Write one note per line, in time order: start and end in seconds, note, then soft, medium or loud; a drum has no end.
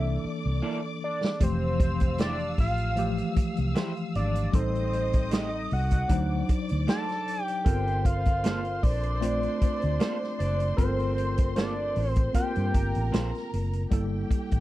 0.00 0.16 C2 loud
0.00 0.92 E3 medium
0.00 0.92 A#3 medium
0.00 0.92 D4 medium
0.00 0.93 A4 medium
0.00 1.38 D5 medium
0.00 0.25 E5 medium
0.00 1.38 D6 medium
0.25 muted fingered electric bass stroke soft
0.45 0.60 C2 medium
0.62 0.79 A#3 medium
0.62 0.79 E4 medium
0.62 0.79 A4 medium
0.62 0.79 D5 medium
1.04 1.45 D5 medium
1.24 snare medium
1.40 2.54 F1 loud
1.40 2.49 E3 medium
1.40 2.48 F3 medium
1.40 2.48 A3 medium
1.40 2.49 G4 medium
1.40 2.20 C5 loud
1.40 4.49 F5 medium
1.40 4.49 E6 medium
1.40 kick loud
1.40 closed hi-hat medium
1.80 kick loud
1.80 closed hi-hat medium
2.00 kick loud
2.00 closed hi-hat medium
2.18 2.35 A3 medium
2.18 2.35 E4 medium
2.18 2.36 G4 medium
2.18 2.36 C5 medium
2.18 2.56 D5 loud
2.18 snare loud
2.18 closed hi-hat medium
2.39 closed hi-hat soft
2.58 3.21 A1 medium
2.58 3.33 F5 loud
2.58 kick medium
2.58 open hi-hat medium
2.78 closed hi-hat medium
2.96 4.05 E3 medium
2.96 4.04 F3 medium
2.96 4.04 A3 medium
2.96 4.05 G4 medium
2.96 closed hi-hat medium
3.18 closed hi-hat soft
3.36 muted fingered electric bass stroke soft
3.36 kick medium
3.36 closed hi-hat medium
3.57 3.72 C2 medium
3.57 closed hi-hat soft
3.75 3.91 A3 medium
3.75 3.92 E4 medium
3.75 3.92 G4 medium
3.75 3.92 C5 medium
3.75 snare loud
3.75 closed hi-hat medium
3.97 closed hi-hat soft
4.15 4.46 G#1 medium
4.15 4.56 D5 medium
4.15 closed hi-hat medium
4.35 closed hi-hat medium
4.52 5.67 A1 medium
4.52 5.60 G3 medium
4.52 5.61 C4 medium
4.52 5.61 D#4 medium
4.52 5.61 A4 medium
4.52 5.35 C5 medium
4.52 6.07 D#5 medium
4.52 6.07 D#6 medium
4.52 kick loud
4.52 closed hi-hat medium
4.75 closed hi-hat soft
4.93 closed hi-hat medium
5.13 kick medium
5.13 closed hi-hat medium
5.31 5.48 A3 medium
5.31 5.48 D#4 medium
5.31 5.48 G4 medium
5.31 5.48 C5 medium
5.31 5.75 D#5 loud
5.31 snare loud
5.31 closed hi-hat medium
5.71 6.03 C2 loud
5.71 6.50 F#5 loud
5.71 open hi-hat medium
5.91 kick medium
5.91 closed hi-hat medium
6.09 6.41 D2 loud
6.09 7.17 F#3 medium
6.09 7.17 D4 medium
6.09 7.18 D#4 medium
6.09 7.18 C5 medium
6.09 7.63 D5 medium
6.09 7.63 D6 medium
6.09 kick medium
6.09 closed hi-hat loud
6.49 muted fingered electric bass stroke soft
6.49 kick medium
6.49 closed hi-hat medium
6.69 6.85 D2 medium
6.69 closed hi-hat medium
6.87 7.04 A3 medium
6.87 7.04 D#4 medium
6.87 7.04 F#4 medium
6.87 7.05 C5 medium
6.87 7.43 A5 loud
6.87 snare loud
6.87 closed hi-hat medium
7.09 snare soft
7.09 closed hi-hat soft
7.28 closed hi-hat medium
7.43 7.67 G5 loud
7.48 closed hi-hat medium
7.65 8.79 G1 loud
7.65 8.73 C4 medium
7.65 8.74 F4 medium
7.65 8.73 A4 medium
7.65 8.74 A#4 medium
7.65 12.70 C5 medium
7.65 8.07 G5 loud
7.65 12.70 C6 medium
7.65 kick loud
7.65 closed hi-hat medium
7.87 closed hi-hat soft
8.05 8.84 F5 loud
8.05 kick loud
8.05 closed hi-hat medium
8.25 kick loud
8.25 closed hi-hat medium
8.44 8.60 A#3 medium
8.44 8.60 F4 medium
8.44 8.61 A4 medium
8.44 8.61 C5 medium
8.44 snare loud
8.44 closed hi-hat medium
8.65 closed hi-hat soft
8.83 9.46 A#1 medium
8.83 10.38 D5 loud
8.83 kick medium
8.83 open hi-hat medium
9.03 closed hi-hat medium
9.21 10.29 A3 medium
9.21 10.29 C4 medium
9.21 10.30 F4 medium
9.21 10.30 C5 medium
9.21 closed hi-hat loud
9.43 closed hi-hat soft
9.61 muted fingered electric bass stroke soft
9.61 kick medium
9.61 closed hi-hat medium
9.82 9.97 D2 medium
9.82 closed hi-hat soft
10.00 10.16 A#3 medium
10.00 10.17 F4 medium
10.00 10.17 A4 medium
10.00 10.17 C5 medium
10.00 snare loud
10.00 closed hi-hat medium
10.23 snare soft
10.39 10.71 F#1 medium
10.39 10.75 D5 medium
10.39 closed hi-hat medium
10.60 closed hi-hat medium
10.77 11.92 G1 medium
10.77 11.86 C4 medium
10.77 11.86 F4 medium
10.77 11.85 A4 medium
10.77 11.87 A#4 medium
10.77 11.52 C5 medium
10.77 kick loud
10.77 closed hi-hat medium
11.00 closed hi-hat soft
11.18 closed hi-hat medium
11.38 kick loud
11.38 closed hi-hat medium
11.56 11.73 A#3 medium
11.56 11.73 F4 medium
11.56 11.73 A4 medium
11.56 11.73 C5 medium
11.56 12.11 D5 loud
11.56 snare loud
11.56 closed hi-hat medium
11.96 12.28 A1 medium
11.96 open hi-hat medium
12.11 12.30 C5 loud
12.16 kick medium
12.16 closed hi-hat medium
12.33 13.42 A#3 medium
12.33 13.42 C4 medium
12.33 13.42 F4 medium
12.33 13.43 A#4 medium
12.33 13.48 G5 loud
12.33 kick medium
12.33 closed hi-hat medium
12.55 12.71 G2 medium
12.55 closed hi-hat soft
12.74 12.91 G1 medium
12.74 13.89 A#4 medium
12.74 13.89 A#5 medium
12.74 kick medium
12.74 closed hi-hat medium
12.95 13.10 A1 medium
12.95 closed hi-hat soft
13.12 13.31 A#1 medium
13.12 13.29 A#3 medium
13.12 13.29 F4 medium
13.12 13.30 A4 medium
13.12 13.30 C5 medium
13.12 snare loud
13.12 closed hi-hat medium
13.35 snare soft
13.35 closed hi-hat soft
13.53 13.84 F#1 loud
13.53 closed hi-hat medium
13.73 closed hi-hat medium
13.90 14.23 G1 medium
13.90 14.60 G3 medium
13.90 14.60 A#3 medium
13.90 14.60 E4 medium
13.90 14.60 G4 medium
13.90 14.60 A4 medium
13.90 14.60 G5 medium
13.90 kick loud
13.90 closed hi-hat medium
14.31 kick medium
14.31 closed hi-hat medium
14.51 14.60 A1 medium
14.51 kick medium
14.51 closed hi-hat medium